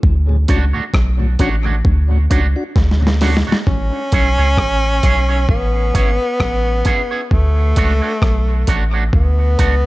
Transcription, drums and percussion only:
0, 0, Header, 1, 2, 480
1, 0, Start_track
1, 0, Key_signature, 3, "major"
1, 0, Tempo, 910470
1, 16, Time_signature, 4, 2, 24, 8
1, 5198, End_track
2, 0, Start_track
2, 0, Title_t, "Drums"
2, 17, Note_on_c, 9, 36, 113
2, 70, Note_off_c, 9, 36, 0
2, 254, Note_on_c, 9, 42, 72
2, 258, Note_on_c, 9, 36, 87
2, 307, Note_off_c, 9, 42, 0
2, 310, Note_off_c, 9, 36, 0
2, 494, Note_on_c, 9, 36, 97
2, 498, Note_on_c, 9, 37, 97
2, 546, Note_off_c, 9, 36, 0
2, 551, Note_off_c, 9, 37, 0
2, 733, Note_on_c, 9, 42, 56
2, 735, Note_on_c, 9, 36, 76
2, 786, Note_off_c, 9, 42, 0
2, 788, Note_off_c, 9, 36, 0
2, 974, Note_on_c, 9, 36, 99
2, 1027, Note_off_c, 9, 36, 0
2, 1216, Note_on_c, 9, 42, 64
2, 1217, Note_on_c, 9, 36, 85
2, 1269, Note_off_c, 9, 42, 0
2, 1270, Note_off_c, 9, 36, 0
2, 1454, Note_on_c, 9, 36, 114
2, 1457, Note_on_c, 9, 38, 55
2, 1506, Note_off_c, 9, 36, 0
2, 1510, Note_off_c, 9, 38, 0
2, 1536, Note_on_c, 9, 38, 47
2, 1589, Note_off_c, 9, 38, 0
2, 1617, Note_on_c, 9, 38, 72
2, 1670, Note_off_c, 9, 38, 0
2, 1691, Note_on_c, 9, 46, 66
2, 1696, Note_on_c, 9, 38, 65
2, 1744, Note_off_c, 9, 46, 0
2, 1749, Note_off_c, 9, 38, 0
2, 1775, Note_on_c, 9, 38, 85
2, 1828, Note_off_c, 9, 38, 0
2, 1857, Note_on_c, 9, 38, 80
2, 1910, Note_off_c, 9, 38, 0
2, 1934, Note_on_c, 9, 36, 106
2, 1987, Note_off_c, 9, 36, 0
2, 2172, Note_on_c, 9, 42, 67
2, 2175, Note_on_c, 9, 36, 90
2, 2225, Note_off_c, 9, 42, 0
2, 2228, Note_off_c, 9, 36, 0
2, 2412, Note_on_c, 9, 36, 97
2, 2416, Note_on_c, 9, 37, 91
2, 2465, Note_off_c, 9, 36, 0
2, 2469, Note_off_c, 9, 37, 0
2, 2652, Note_on_c, 9, 42, 60
2, 2654, Note_on_c, 9, 36, 77
2, 2705, Note_off_c, 9, 42, 0
2, 2707, Note_off_c, 9, 36, 0
2, 2893, Note_on_c, 9, 36, 98
2, 2946, Note_off_c, 9, 36, 0
2, 3136, Note_on_c, 9, 36, 85
2, 3137, Note_on_c, 9, 42, 65
2, 3189, Note_off_c, 9, 36, 0
2, 3189, Note_off_c, 9, 42, 0
2, 3374, Note_on_c, 9, 36, 95
2, 3376, Note_on_c, 9, 37, 103
2, 3426, Note_off_c, 9, 36, 0
2, 3428, Note_off_c, 9, 37, 0
2, 3610, Note_on_c, 9, 42, 59
2, 3614, Note_on_c, 9, 36, 88
2, 3663, Note_off_c, 9, 42, 0
2, 3667, Note_off_c, 9, 36, 0
2, 3854, Note_on_c, 9, 36, 99
2, 3907, Note_off_c, 9, 36, 0
2, 4092, Note_on_c, 9, 42, 68
2, 4096, Note_on_c, 9, 36, 84
2, 4145, Note_off_c, 9, 42, 0
2, 4149, Note_off_c, 9, 36, 0
2, 4333, Note_on_c, 9, 36, 98
2, 4336, Note_on_c, 9, 37, 95
2, 4385, Note_off_c, 9, 36, 0
2, 4389, Note_off_c, 9, 37, 0
2, 4572, Note_on_c, 9, 42, 61
2, 4575, Note_on_c, 9, 36, 68
2, 4625, Note_off_c, 9, 42, 0
2, 4628, Note_off_c, 9, 36, 0
2, 4813, Note_on_c, 9, 36, 98
2, 4866, Note_off_c, 9, 36, 0
2, 5055, Note_on_c, 9, 42, 66
2, 5057, Note_on_c, 9, 36, 84
2, 5108, Note_off_c, 9, 42, 0
2, 5109, Note_off_c, 9, 36, 0
2, 5198, End_track
0, 0, End_of_file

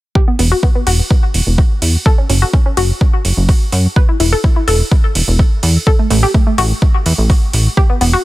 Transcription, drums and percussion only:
0, 0, Header, 1, 2, 480
1, 0, Start_track
1, 0, Tempo, 476190
1, 154, Time_signature, 4, 2, 24, 8
1, 8307, End_track
2, 0, Start_track
2, 0, Title_t, "Drums"
2, 154, Note_on_c, 9, 36, 119
2, 255, Note_off_c, 9, 36, 0
2, 394, Note_on_c, 9, 46, 101
2, 495, Note_off_c, 9, 46, 0
2, 634, Note_on_c, 9, 36, 99
2, 735, Note_off_c, 9, 36, 0
2, 874, Note_on_c, 9, 46, 105
2, 975, Note_off_c, 9, 46, 0
2, 1114, Note_on_c, 9, 36, 116
2, 1215, Note_off_c, 9, 36, 0
2, 1354, Note_on_c, 9, 46, 98
2, 1455, Note_off_c, 9, 46, 0
2, 1594, Note_on_c, 9, 36, 100
2, 1695, Note_off_c, 9, 36, 0
2, 1834, Note_on_c, 9, 46, 103
2, 1935, Note_off_c, 9, 46, 0
2, 2074, Note_on_c, 9, 36, 118
2, 2175, Note_off_c, 9, 36, 0
2, 2314, Note_on_c, 9, 46, 105
2, 2415, Note_off_c, 9, 46, 0
2, 2554, Note_on_c, 9, 36, 105
2, 2655, Note_off_c, 9, 36, 0
2, 2794, Note_on_c, 9, 46, 107
2, 2894, Note_off_c, 9, 46, 0
2, 3034, Note_on_c, 9, 36, 119
2, 3135, Note_off_c, 9, 36, 0
2, 3274, Note_on_c, 9, 46, 107
2, 3375, Note_off_c, 9, 46, 0
2, 3514, Note_on_c, 9, 36, 108
2, 3514, Note_on_c, 9, 46, 58
2, 3615, Note_off_c, 9, 36, 0
2, 3615, Note_off_c, 9, 46, 0
2, 3754, Note_on_c, 9, 46, 104
2, 3855, Note_off_c, 9, 46, 0
2, 3994, Note_on_c, 9, 36, 119
2, 4095, Note_off_c, 9, 36, 0
2, 4234, Note_on_c, 9, 46, 107
2, 4335, Note_off_c, 9, 46, 0
2, 4474, Note_on_c, 9, 36, 105
2, 4575, Note_off_c, 9, 36, 0
2, 4714, Note_on_c, 9, 46, 108
2, 4815, Note_off_c, 9, 46, 0
2, 4954, Note_on_c, 9, 36, 120
2, 5055, Note_off_c, 9, 36, 0
2, 5194, Note_on_c, 9, 46, 108
2, 5295, Note_off_c, 9, 46, 0
2, 5434, Note_on_c, 9, 36, 108
2, 5535, Note_off_c, 9, 36, 0
2, 5674, Note_on_c, 9, 46, 107
2, 5775, Note_off_c, 9, 46, 0
2, 5914, Note_on_c, 9, 36, 120
2, 6015, Note_off_c, 9, 36, 0
2, 6154, Note_on_c, 9, 46, 106
2, 6254, Note_off_c, 9, 46, 0
2, 6394, Note_on_c, 9, 36, 108
2, 6495, Note_off_c, 9, 36, 0
2, 6634, Note_on_c, 9, 46, 99
2, 6735, Note_off_c, 9, 46, 0
2, 6874, Note_on_c, 9, 36, 123
2, 6975, Note_off_c, 9, 36, 0
2, 7115, Note_on_c, 9, 46, 105
2, 7215, Note_off_c, 9, 46, 0
2, 7354, Note_on_c, 9, 36, 105
2, 7355, Note_on_c, 9, 46, 58
2, 7455, Note_off_c, 9, 36, 0
2, 7456, Note_off_c, 9, 46, 0
2, 7594, Note_on_c, 9, 46, 108
2, 7695, Note_off_c, 9, 46, 0
2, 7835, Note_on_c, 9, 36, 113
2, 7935, Note_off_c, 9, 36, 0
2, 8075, Note_on_c, 9, 46, 97
2, 8176, Note_off_c, 9, 46, 0
2, 8307, End_track
0, 0, End_of_file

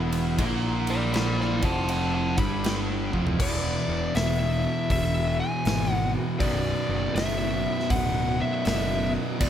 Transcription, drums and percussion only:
0, 0, Header, 1, 2, 480
1, 0, Start_track
1, 0, Tempo, 750939
1, 252, Time_signature, 4, 2, 24, 8
1, 6069, End_track
2, 0, Start_track
2, 0, Title_t, "Drums"
2, 80, Note_on_c, 9, 51, 74
2, 144, Note_off_c, 9, 51, 0
2, 246, Note_on_c, 9, 51, 102
2, 247, Note_on_c, 9, 36, 111
2, 310, Note_off_c, 9, 51, 0
2, 311, Note_off_c, 9, 36, 0
2, 556, Note_on_c, 9, 51, 69
2, 620, Note_off_c, 9, 51, 0
2, 727, Note_on_c, 9, 51, 99
2, 740, Note_on_c, 9, 38, 126
2, 791, Note_off_c, 9, 51, 0
2, 804, Note_off_c, 9, 38, 0
2, 900, Note_on_c, 9, 38, 38
2, 964, Note_off_c, 9, 38, 0
2, 1038, Note_on_c, 9, 51, 82
2, 1040, Note_on_c, 9, 36, 109
2, 1102, Note_off_c, 9, 51, 0
2, 1104, Note_off_c, 9, 36, 0
2, 1205, Note_on_c, 9, 51, 98
2, 1269, Note_off_c, 9, 51, 0
2, 1519, Note_on_c, 9, 51, 80
2, 1521, Note_on_c, 9, 36, 105
2, 1583, Note_off_c, 9, 51, 0
2, 1585, Note_off_c, 9, 36, 0
2, 1689, Note_on_c, 9, 51, 107
2, 1702, Note_on_c, 9, 38, 126
2, 1753, Note_off_c, 9, 51, 0
2, 1766, Note_off_c, 9, 38, 0
2, 2003, Note_on_c, 9, 36, 65
2, 2067, Note_off_c, 9, 36, 0
2, 2088, Note_on_c, 9, 43, 89
2, 2152, Note_off_c, 9, 43, 0
2, 2172, Note_on_c, 9, 36, 127
2, 2173, Note_on_c, 9, 49, 127
2, 2235, Note_off_c, 9, 36, 0
2, 2237, Note_off_c, 9, 49, 0
2, 2652, Note_on_c, 9, 46, 74
2, 2665, Note_on_c, 9, 38, 127
2, 2716, Note_off_c, 9, 46, 0
2, 2728, Note_off_c, 9, 38, 0
2, 3133, Note_on_c, 9, 36, 105
2, 3134, Note_on_c, 9, 46, 62
2, 3197, Note_off_c, 9, 36, 0
2, 3198, Note_off_c, 9, 46, 0
2, 3613, Note_on_c, 9, 46, 62
2, 3626, Note_on_c, 9, 38, 115
2, 3677, Note_off_c, 9, 46, 0
2, 3690, Note_off_c, 9, 38, 0
2, 4093, Note_on_c, 9, 36, 116
2, 4096, Note_on_c, 9, 46, 66
2, 4157, Note_off_c, 9, 36, 0
2, 4160, Note_off_c, 9, 46, 0
2, 4575, Note_on_c, 9, 46, 71
2, 4588, Note_on_c, 9, 38, 124
2, 4639, Note_off_c, 9, 46, 0
2, 4652, Note_off_c, 9, 38, 0
2, 4982, Note_on_c, 9, 38, 38
2, 5046, Note_off_c, 9, 38, 0
2, 5052, Note_on_c, 9, 36, 108
2, 5052, Note_on_c, 9, 46, 60
2, 5116, Note_off_c, 9, 36, 0
2, 5116, Note_off_c, 9, 46, 0
2, 5530, Note_on_c, 9, 46, 68
2, 5543, Note_on_c, 9, 38, 118
2, 5594, Note_off_c, 9, 46, 0
2, 5607, Note_off_c, 9, 38, 0
2, 6012, Note_on_c, 9, 57, 114
2, 6013, Note_on_c, 9, 36, 113
2, 6069, Note_off_c, 9, 36, 0
2, 6069, Note_off_c, 9, 57, 0
2, 6069, End_track
0, 0, End_of_file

